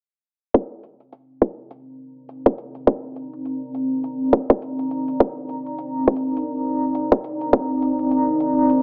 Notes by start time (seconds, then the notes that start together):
0.54 C4, kick, closed hi-hat
0.76 D#4
0.83 closed hi-hat
1.00 closed hi-hat
1.08 D5
1.12 A#5, closed hi-hat
1.42 kick, closed hi-hat
1.71 closed hi-hat
2.29 closed hi-hat
2.46 kick, closed hi-hat
2.58 closed hi-hat
2.75 closed hi-hat
2.87 kick, closed hi-hat
3.16 closed hi-hat
3.33 closed hi-hat
3.45 closed hi-hat
3.75 closed hi-hat
4.04 closed hi-hat
4.33 kick
4.50 kick
4.62 closed hi-hat
4.79 closed hi-hat
4.91 closed hi-hat
5.08 closed hi-hat
5.20 kick, closed hi-hat
5.49 closed hi-hat
5.66 closed hi-hat
5.78 closed hi-hat
6.08 kick
6.16 closed hi-hat
6.37 closed hi-hat
6.95 closed hi-hat
7.12 kick, closed hi-hat
7.24 closed hi-hat
7.41 closed hi-hat
7.53 kick, closed hi-hat
7.82 closed hi-hat
7.99 closed hi-hat
8.11 closed hi-hat
8.40 closed hi-hat
8.70 closed hi-hat